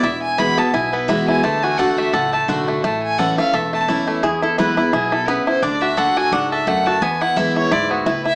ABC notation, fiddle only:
X:1
M:4/4
L:1/8
Q:"Swing" 1/4=172
K:Emix
V:1 name="Fiddle"
e g b a g B e g | a g f e f a z2 | a g f =f e a z2 | z4 G A B =c |
d e f g f e f a | g f e c d F B e |]